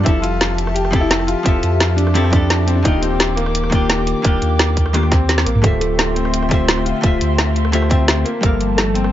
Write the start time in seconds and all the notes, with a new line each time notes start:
Already playing: A5
0.03 F1 F3 C4 E4 G4 E5, kick, closed hi-hat
0.08 A4
0.22 F4, closed hi-hat
0.41 snare, closed hi-hat
0.58 closed hi-hat
0.67 cross-stick
0.74 G4, closed hi-hat
0.85 cross-stick
0.91 F3 C4 E4 G4, kick, closed hi-hat
0.96 A4
1.01 E4
1.11 snare, closed hi-hat
1.20 cross-stick
1.27 F4, closed hi-hat
1.43 F1 F3 C4 G4 E5, kick, closed hi-hat
1.48 A4
1.63 F2, closed hi-hat
1.80 snare, closed hi-hat
1.96 D4, closed hi-hat
2.07 cross-stick
2.14 F3 C4 E4 G4 A4, closed hi-hat
2.24 cross-stick
2.30 F3 C4 D4 E4 G4, kick, closed hi-hat
2.36 A4
2.50 snare, closed hi-hat
2.66 C4, closed hi-hat
2.75 D4
2.82 D#1 D#3 A#3 D4 D#4 F4 D6, kick, closed hi-hat
2.88 G4
3.01 C4, closed hi-hat
3.20 snare, closed hi-hat
3.36 A#3, closed hi-hat
3.46 cross-stick
3.55 closed hi-hat
3.64 cross-stick
3.70 D#3 A#3 D4 F4, kick, closed hi-hat
3.75 G4
3.90 snare, closed hi-hat
3.98 cross-stick
4.07 closed hi-hat
4.22 D#1 D#3 A#3 D4 F4, kick, closed hi-hat
4.27 G4
4.42 D#2, closed hi-hat
4.59 snare, closed hi-hat
4.77 kick, closed hi-hat
4.86 cross-stick
4.93 D#3 A#3 D4 F4 G4, cross-stick, closed hi-hat
5.03 cross-stick
5.10 C4, kick, snare, closed hi-hat
5.29 snare, closed hi-hat
5.38 snare
5.45 A#1 A#3, closed hi-hat
5.55 A#1, mid tom
5.62 D1 D3 A3 F4 G4 E5 G5 C6, kick, closed hi-hat
5.66 C5 E5
5.80 A3, closed hi-hat
5.99 snare, closed hi-hat
6.15 C4, closed hi-hat
6.25 cross-stick
6.34 closed hi-hat
6.42 cross-stick
6.49 D3 A3 F4 G4, kick, closed hi-hat
6.53 C5 E5
6.68 snare, closed hi-hat
6.77 cross-stick
6.85 F4, closed hi-hat
7.01 D1 D3 A3 F4 G4, kick, closed hi-hat
7.05 C5 E5
7.21 D2, closed hi-hat
7.38 snare, closed hi-hat
7.56 closed hi-hat
7.65 cross-stick
7.72 D3 A3 F4 G4 C5 E5, closed hi-hat
7.82 cross-stick
7.89 D3 A3 C4 F4 G4 C5 E5, kick, closed hi-hat
8.08 snare, closed hi-hat
8.24 F3 A#3 A5, closed hi-hat
8.41 G1 G3 G4 A4 A#4, kick, closed hi-hat
8.46 F5
8.61 closed hi-hat
8.77 A3, snare, closed hi-hat
8.94 C4, closed hi-hat
9.04 cross-stick